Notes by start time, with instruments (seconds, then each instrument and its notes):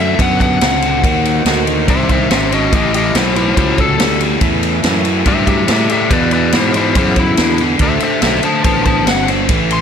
Already playing: fingered electric bass F#2, overdriven electric guitar D3 A3, tonewheel organ D4 F#4 A4
0.01 electric slide guitar E5
0.18 fingered electric bass F#2, overdriven electric guitar D3 B3, electric slide guitar F#5, kick, ride
0.40 electric slide guitar F#5, kick, ride
0.61 fingered electric bass C#2, overdriven electric guitar D3 C4, snare, ride
0.82 overdriven electric guitar D3 C4, ride
1.04 fingered electric bass D#2, overdriven electric guitar D#3 A#3, tonewheel organ D#4 F#4 C5, kick, ride
1.25 ride
1.45 fingered electric bass D2, overdriven electric guitar D#3 A#3, snare, ride
1.67 overdriven electric guitar D#3 A#3, ride
1.88 fingered electric bass C2, overdriven electric guitar D#3 C4, electric slide guitar C5 E5, kick, ride
2.09 electric slide guitar C5 E5, kick, ride
2.30 fingered electric bass G#1, overdriven electric guitar D#3 C#4, electric slide guitar C5 E5, snare, ride
2.52 overdriven electric guitar D#3 C#4, electric slide guitar F#4 D#5, ride
2.72 fingered electric bass A1, overdriven electric guitar A2 E3, tonewheel organ C#4 E4 A4, electric slide guitar G4, kick, ride
2.76 electric slide guitar D#5
2.94 electric slide guitar G4 D#5, ride
3.15 fingered electric bass B1, overdriven electric guitar A2 E3, electric slide guitar E4 C5, snare, ride
3.36 overdriven electric guitar A2 E3, electric slide guitar E4 C5, ride
3.56 fingered electric bass C#2, overdriven electric guitar A2 F#3, electric slide guitar E4 C5, kick, ride
3.78 electric slide guitar A4, kick, ride
3.98 fingered electric bass D2, overdriven electric guitar A2 G3, snare, ride
4.20 overdriven electric guitar A2 G3, ride
4.40 fingered electric bass E2, overdriven electric guitar A2 E3, kick, ride
4.63 ride
4.83 fingered electric bass F#2, overdriven electric guitar A2 E3, snare, ride
5.03 overdriven electric guitar A2 E3, ride
5.25 fingered electric bass G2, overdriven electric guitar A2 F#3, electric slide guitar G4 E5, kick, ride
5.47 electric slide guitar G4 E5, kick, ride
5.68 overdriven electric guitar A2 G3, fingered electric bass A2, electric slide guitar G4, snare, ride
5.72 electric slide guitar E5
5.89 overdriven electric guitar A2 G3, electric slide guitar G4 E5, ride
6.09 fingered electric bass E2, overdriven electric guitar E2 B2, tonewheel organ B3 E4 G#4, electric slide guitar B4, kick, ride
6.13 electric slide guitar D5
6.31 electric slide guitar B4 D5, ride
6.52 overdriven electric guitar E2 B2, fingered electric bass G#2, electric slide guitar E4 C5, snare, ride
6.74 overdriven electric guitar E2 B2, electric slide guitar E4 C5, ride
6.95 overdriven electric guitar E2 C#3, fingered electric bass F#2, electric slide guitar E4 C5, kick, ride
7.16 electric slide guitar E4, kick, ride
7.37 overdriven electric guitar E2 D3, fingered electric bass E2, snare, ride
7.58 overdriven electric guitar E2 D3, ride
7.79 fingered electric bass D2, overdriven electric guitar D3 A3, tonewheel organ D4 F#4 A4, electric slide guitar C5 E5, kick, ride
8.00 electric slide guitar C5, muted fingered electric bass stroke, ride
8.05 electric slide guitar E5
8.22 fingered electric bass B1, overdriven electric guitar D3 A3, electric slide guitar C5 E5, snare, ride
8.43 overdriven electric guitar D3 A3, electric slide guitar C5 A5, muted fingered electric bass stroke, ride
8.64 fingered electric bass A1, overdriven electric guitar D3 B3, electric slide guitar C5 A5, kick, ride
8.85 electric slide guitar C5 A5, kick, ride
9.07 fingered electric bass G1, overdriven electric guitar D3 C4, electric slide guitar F#5, snare, ride
9.28 overdriven electric guitar D3 C4, ride
9.49 fingered electric bass A1, overdriven electric guitar A2 E3, tonewheel organ C#4 E4 A4, kick, ride
9.70 electric slide guitar C6, ride